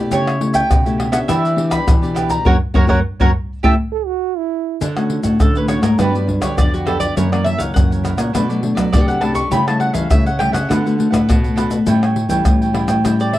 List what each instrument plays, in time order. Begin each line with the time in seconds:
Already playing: nylon-string guitar A3 E4 G4, cavaquinho G4 B4
0.11 nylon-string guitar C#3, cavaquinho G4 A4 C#5 E5, mandolin C#5, pandeiro, maracas, surdo
0.27 cavaquinho A4 C#5 E5, pandeiro, tamborim, maracas
0.40 nylon-string guitar A3 E4 G4, muted cavaquinho stroke, pandeiro
0.54 cavaquinho A4 C#5 E5, mandolin G5, pandeiro, maracas, surdo
0.70 nylon-string guitar B2 C#3, muted cavaquinho stroke, pandeiro, tamborim, maracas, surdo
0.85 nylon-string guitar A3 E4 G4, cavaquinho A4 C#5 E5, pandeiro, maracas
0.98 cavaquinho G4 A4 C#5 E5, pandeiro, tamborim
1.12 nylon-string guitar B3 D4 G4, cavaquinho A4 C#5 E5, mandolin F#5, pandeiro, tamborim, maracas
1.28 nylon-string guitar E3, cavaquinho E4 G4 B4 D5, mandolin E5, pandeiro, tamborim, maracas, surdo
1.43 cavaquinho G4 B4 D5, pandeiro, maracas
1.56 nylon-string guitar B3 D4 G4, pandeiro
1.70 cavaquinho G4 B4 D5, mandolin B5, pandeiro, tamborim, maracas, surdo
1.86 nylon-string guitar B2 E3, pandeiro, tamborim, maracas, surdo
2.02 nylon-string guitar B3 D4 G4, cavaquinho G4 B4 D5, pandeiro, maracas, surdo
2.15 cavaquinho E4 G4 B4 D5, pandeiro, tamborim, maracas
2.29 cavaquinho G4 B4 D5, mandolin A#5, pandeiro, maracas, surdo
2.45 nylon-string guitar F#2 A#3 C#4 F#4, cavaquinho F#4 A#4 C#5, mandolin A#4 C#5 F#5, surdo
2.74 nylon-string guitar F#2 A#3 C#4 F#4, cavaquinho F#4 A#4 C#5, mandolin A#4 C#5 F#5, surdo
2.87 nylon-string guitar F#2 A#3 C#4 F#4, cavaquinho F#4 A#4 C#5, mandolin A#4 C#5 F#5, surdo
3.20 nylon-string guitar F#2 A#3 C#4 F#4, cavaquinho F#4 A#4 C#5, mandolin A#4 C#5 F#5, surdo
3.63 nylon-string guitar A2 A3 C#4 E4, cavaquinho G4 A4 C#5, mandolin E5 G5 A5, surdo
3.92 trombone A4
4.06 trombone F#4
4.38 trombone E4
4.81 nylon-string guitar D3, cavaquinho D4 A4 C#5 F#5, pandeiro, maracas, surdo
4.97 nylon-string guitar A3 C#4 F#4, cavaquinho A4 C#5 F#5, pandeiro, tamborim, maracas
5.10 pandeiro
5.23 nylon-string guitar A2, cavaquinho A4 C#5 F#5, pandeiro, maracas, surdo
5.40 nylon-string guitar A2 D3 A3 C#4 F#4, mandolin A4, pandeiro, tamborim, maracas, surdo
5.55 cavaquinho A4 C#5 F#5, mandolin B4, pandeiro, maracas
5.68 nylon-string guitar A3 C#4 F#4, cavaquinho D4 A4 C#5 F#5, mandolin C#5, pandeiro, tamborim, maracas
5.81 nylon-string guitar G#2, cavaquinho A4 C#5 F#5, mandolin A#4, pandeiro, tamborim, maracas
5.98 nylon-string guitar G2 F#3 B3 D4, cavaquinho F#4 G4 B4 D5, mandolin B4, pandeiro, tamborim, maracas, surdo
6.14 nylon-string guitar F#3 B3 D4, cavaquinho G4 B4 D5, pandeiro, maracas
6.27 nylon-string guitar F#3 B3 D4, muted cavaquinho stroke, pandeiro, surdo
6.40 nylon-string guitar D3, cavaquinho G4 B4 D5, mandolin C#5, pandeiro, tamborim, maracas, surdo
6.57 nylon-string guitar F2 D3 F#3 B3 D4, mandolin D5, pandeiro, tamborim, maracas, surdo
6.73 mandolin F#4, cavaquinho G4 B4 D5, pandeiro, maracas, surdo
6.86 nylon-string guitar F#3 B3 D4, cavaquinho F#4 G4 B4 D5, mandolin A4, pandeiro, tamborim
7.00 cavaquinho G4 B4 D5, mandolin D5, pandeiro, maracas, surdo
7.16 nylon-string guitar F#2 E3 A#3 C#4, cavaquinho E4 A#4 C#5 F#5, mandolin C#5, pandeiro, maracas, surdo
7.32 nylon-string guitar E3 A#3 C#4, cavaquinho A#4 C#5 F#5, mandolin D5, pandeiro, tamborim, maracas
7.44 mandolin E5, pandeiro
7.58 nylon-string guitar C#3, cavaquinho A#4 C#5 F#5, mandolin F5, pandeiro, maracas, surdo
7.74 nylon-string guitar F#2 C#3 E3 A#3 C#4, mandolin F#5, pandeiro, tamborim, maracas, surdo
7.91 cavaquinho A#4 C#5 F#5, pandeiro, maracas
8.03 cavaquinho E4 A#4 C#5 F#5, pandeiro, tamborim, maracas
8.17 nylon-string guitar A#2, cavaquinho A#4 C#5 F#5, pandeiro, tamborim, maracas
8.33 nylon-string guitar B2 F#3 A3 D4, cavaquinho D4 A4 B4 D5, pandeiro, tamborim, maracas, surdo
8.49 nylon-string guitar F#3 A3 D4, cavaquinho A4 B4 D5, pandeiro, maracas
8.62 nylon-string guitar F#3 A3 D4, muted cavaquinho stroke, pandeiro
8.75 nylon-string guitar F#3, cavaquinho A4 B4 D5, pandeiro, tamborim, maracas, surdo
8.93 nylon-string guitar F#2 C3 F#3 A3 D4, mandolin D5, pandeiro, tamborim, maracas, surdo
9.07 cavaquinho A4 B4 D5, mandolin F#5, pandeiro, maracas, surdo
9.21 nylon-string guitar F#3 A3 D4, cavaquinho D4 A4 B4 D5, mandolin A5, pandeiro, tamborim
9.34 cavaquinho A4 B4 D5, mandolin C#6, pandeiro, maracas, surdo
9.51 nylon-string guitar C#3 G3 A3 E4, cavaquinho G4 A4 C#5 E5, mandolin B5, pandeiro, maracas, surdo
9.67 nylon-string guitar G3 A3 E4, cavaquinho A4 C#5 E5, mandolin A5, pandeiro, tamborim, maracas
9.80 mandolin F#5, pandeiro
9.93 nylon-string guitar E3, cavaquinho A4 C#5 E5, mandolin F5, pandeiro, maracas, surdo
10.10 nylon-string guitar C#3 G3 A3 E4, mandolin E5, pandeiro, tamborim, maracas, surdo
10.26 cavaquinho A4 C#5 E5, mandolin F#5, pandeiro, maracas
10.38 nylon-string guitar G3 A3 E4, cavaquinho G4 A4 C#5 E5, mandolin G5, pandeiro, tamborim
10.52 nylon-string guitar C#3, cavaquinho A4 C#5 E5, mandolin F#5, pandeiro, tamborim, maracas
10.69 nylon-string guitar D3 A3 B3 F#4, cavaquinho D4 A4 B4 F#5, pandeiro, tamborim, maracas, surdo
10.84 nylon-string guitar A3 B3 F#4, cavaquinho A4 B4 F#5, pandeiro, maracas
10.98 nylon-string guitar A3 B3 F#4, muted cavaquinho stroke, pandeiro
11.11 nylon-string guitar A2, cavaquinho A4 B4 F#5, pandeiro, tamborim, maracas, surdo
11.28 nylon-string guitar A2 B2 A3 B3 F#4, pandeiro, tamborim, maracas, surdo
11.43 cavaquinho A4 B4 F#5, pandeiro, maracas, surdo
11.56 nylon-string guitar A3 B3 F#4, cavaquinho D4 A4 B4 F#5, pandeiro, tamborim, maracas
11.71 cavaquinho A4 B4 F#5, pandeiro, maracas, surdo
11.87 nylon-string guitar A2 G3 C#4 E4, cavaquinho E4 A4 C#5 G5, pandeiro, maracas, surdo
12.02 cavaquinho A4 C#5 G5, pandeiro, tamborim, maracas
12.16 pandeiro
12.29 nylon-string guitar E3 G3 C#4 E4, cavaquinho A4 C#5 G5, pandeiro, maracas, surdo
12.45 nylon-string guitar A2 E3, pandeiro, tamborim, maracas, surdo
12.61 cavaquinho A4 C#5 G5, pandeiro, maracas
12.73 nylon-string guitar G3 C#4 E4, cavaquinho E4 A4 C#5 G5, pandeiro, tamborim
12.88 nylon-string guitar A2, cavaquinho A4 C#5 G5, pandeiro, tamborim, maracas
13.04 nylon-string guitar A2 G3 C#4 E4, cavaquinho E4 A4 C#5 G5, pandeiro, tamborim, maracas, surdo
13.19 cavaquinho A4 C#5 G5, mandolin D5, pandeiro, maracas
13.33 mandolin E5, muted cavaquinho stroke, pandeiro